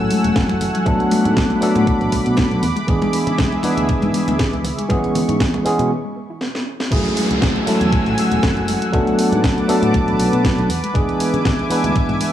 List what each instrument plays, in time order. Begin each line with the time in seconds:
Already playing: tine electric piano F#3 A3 C#4 E4 A4, analog synth pad A3 F#5 G#5 E6
0.10 synth arpeggio sound G#3, open hi-hat, high conga
0.24 fingered electric bass E1, synth arpeggio sound G#3, closed hi-hat, muted conga
0.36 fingered electric bass F#1, synth arpeggio sound E3, kick, snare, closed hi-hat
0.49 synth arpeggio sound F#3, closed hi-hat, muted conga
0.61 synth arpeggio sound G#3, open hi-hat, low conga
0.75 synth arpeggio sound F#3, closed hi-hat, high conga
0.85 fingered electric bass B1, tine electric piano F#3 A3 B3 D4 A4, synth arpeggio sound F#3, analog synth pad B5 D6, kick, closed hi-hat, muted conga
1.00 synth arpeggio sound A3, closed hi-hat
1.11 synth arpeggio sound B3, open hi-hat, muted conga
1.25 fingered electric bass G#2, synth arpeggio sound A3, closed hi-hat
1.36 kick, snare, closed hi-hat, high conga
1.50 synth arpeggio sound A3, closed hi-hat, muted conga
1.61 tine electric piano F#3 A3 B3 D4 A4, synth arpeggio sound B3, muted fingered electric bass stroke, open hi-hat
1.75 fingered electric bass A2, synth arpeggio sound A3, closed hi-hat, muted conga
1.87 synth arpeggio sound F#3, kick, closed hi-hat
2.01 fingered electric bass A1, synth arpeggio sound A3, closed hi-hat
2.12 fingered electric bass B1, synth arpeggio sound B3, kick, open hi-hat, muted conga, high conga
2.26 fingered electric bass B2, synth arpeggio sound B3, closed hi-hat
2.37 synth arpeggio sound F#3, kick, snare, closed hi-hat, muted conga
2.51 fingered electric bass B1, synth arpeggio sound A3, closed hi-hat
2.63 fingered electric bass E2, synth arpeggio sound B3, analog synth pad G#4 E5, open hi-hat, low conga
2.76 synth arpeggio sound G#3, closed hi-hat, muted conga
2.87 fingered electric bass E2, tine electric piano E3 G#3 B3 D4 G#4, synth arpeggio sound E3, kick, closed hi-hat
3.02 synth arpeggio sound G#3, closed hi-hat, muted conga
3.13 synth arpeggio sound B3, open hi-hat
3.27 fingered electric bass C#3, synth arpeggio sound G#3, closed hi-hat
3.38 synth arpeggio sound E3, kick, snare, closed hi-hat, muted conga, high conga
3.52 synth arpeggio sound G#3, closed hi-hat
3.63 tine electric piano E3 G#3 B3 D4 B4, synth arpeggio sound B3, muted fingered electric bass stroke, open hi-hat, muted conga
3.77 fingered electric bass D2, synth arpeggio sound G#3, closed hi-hat
3.89 synth arpeggio sound E3, kick, closed hi-hat
4.02 fingered electric bass G#2, synth arpeggio sound G#3, closed hi-hat, muted conga
4.14 synth arpeggio sound B3, open hi-hat, high conga
4.28 fingered electric bass D2, synth arpeggio sound B3, closed hi-hat, muted conga
4.39 fingered electric bass C#2, synth arpeggio sound E3, kick, snare, closed hi-hat
4.53 synth arpeggio sound G#3, closed hi-hat
4.64 synth arpeggio sound B3, analog synth pad C#6, open hi-hat, muted conga, low conga
4.78 synth arpeggio sound G#3, closed hi-hat, high conga
4.89 fingered electric bass C#2, tine electric piano E3 G#3 B3 C#4 G#4, synth arpeggio sound E3, kick, closed hi-hat, muted conga
5.04 synth arpeggio sound G#3, closed hi-hat
5.15 synth arpeggio sound B3, open hi-hat, low conga
5.29 fingered electric bass G#2, synth arpeggio sound G#3, closed hi-hat, muted conga
5.40 synth arpeggio sound E3, kick, snare, closed hi-hat, high conga
5.54 synth arpeggio sound G#3, closed hi-hat, muted conga
5.64 tine electric piano E3 G#3 B3 C#4 G#4, synth arpeggio sound B3, muted fingered electric bass stroke, open hi-hat
5.79 fingered electric bass B2, synth arpeggio sound G#3, closed hi-hat
5.91 synth arpeggio sound E3
6.05 synth arpeggio sound G#3
6.16 synth arpeggio sound B3
6.30 synth arpeggio sound E4
6.41 synth arpeggio sound B3, snare
6.55 synth arpeggio sound B3, snare
6.67 synth arpeggio sound C#4
6.80 synth arpeggio sound C#4, snare
6.90 fingered electric bass F#1, synth arpeggio sound E3, tine electric piano F#3 A3 C#4 E4 G#4, analog synth pad A3 F#5 G#5 E6, kick, closed hi-hat, crash, downlifter
7.06 synth arpeggio sound F#3, closed hi-hat
7.17 synth arpeggio sound G#3, open hi-hat
7.31 fingered electric bass C#2, synth arpeggio sound F#3, closed hi-hat
7.42 synth arpeggio sound E3, kick, snare, closed hi-hat
7.56 synth arpeggio sound F#3, closed hi-hat
7.66 tine electric piano F#3 A3 C#4 E4 A4, synth arpeggio sound G#3, muted fingered electric bass stroke, open hi-hat
7.81 fingered electric bass E2, synth arpeggio sound F#3, closed hi-hat
7.92 synth arpeggio sound E3, kick, closed hi-hat
8.06 fingered electric bass A1, synth arpeggio sound F#3, closed hi-hat
8.18 synth arpeggio sound G#3, open hi-hat
8.31 fingered electric bass E1, synth arpeggio sound G#3, closed hi-hat
8.43 fingered electric bass F#1, synth arpeggio sound E3, kick, snare, closed hi-hat
8.57 synth arpeggio sound F#3, closed hi-hat
8.68 synth arpeggio sound G#3, open hi-hat
8.82 synth arpeggio sound F#3, closed hi-hat
8.92 fingered electric bass B1, tine electric piano F#3 A3 B3 D4 A4, synth arpeggio sound F#3, analog synth pad B4 A5 D6, kick, closed hi-hat
9.07 synth arpeggio sound A3, closed hi-hat
9.18 synth arpeggio sound B3, open hi-hat
9.32 fingered electric bass G#2, synth arpeggio sound A3, closed hi-hat
9.44 synth arpeggio sound F#3, kick, snare, closed hi-hat
9.57 synth arpeggio sound A3, closed hi-hat
9.68 tine electric piano F#3 A3 B3 D4 A4, synth arpeggio sound B3, muted fingered electric bass stroke, open hi-hat
9.82 fingered electric bass A2, synth arpeggio sound A3, closed hi-hat
9.94 synth arpeggio sound F#3, kick, closed hi-hat
10.07 fingered electric bass A1, synth arpeggio sound A3, closed hi-hat
10.19 fingered electric bass B1, synth arpeggio sound B3, open hi-hat
10.33 fingered electric bass B2, synth arpeggio sound B3, closed hi-hat
10.45 synth arpeggio sound F#3, kick, snare, closed hi-hat
10.58 fingered electric bass B1, synth arpeggio sound A3, closed hi-hat
10.69 fingered electric bass E2, synth arpeggio sound B3, analog synth pad E5 G#5 D6, open hi-hat
10.83 synth arpeggio sound G#3, closed hi-hat
10.94 fingered electric bass E2, tine electric piano E3 G#3 B3 D4 G#4, synth arpeggio sound E3, kick, closed hi-hat
11.09 synth arpeggio sound G#3, closed hi-hat
11.20 synth arpeggio sound B3, open hi-hat
11.34 fingered electric bass C#3, synth arpeggio sound G#3, closed hi-hat
11.45 synth arpeggio sound E3, kick, snare, closed hi-hat
11.59 synth arpeggio sound G#3, closed hi-hat
11.70 tine electric piano E3 G#3 B3 D4 B4, synth arpeggio sound B3, muted fingered electric bass stroke, open hi-hat
11.84 fingered electric bass D2, synth arpeggio sound G#3, closed hi-hat
11.96 synth arpeggio sound E3, kick, closed hi-hat
12.09 fingered electric bass G#2, synth arpeggio sound G#3, closed hi-hat
12.21 synth arpeggio sound B3, open hi-hat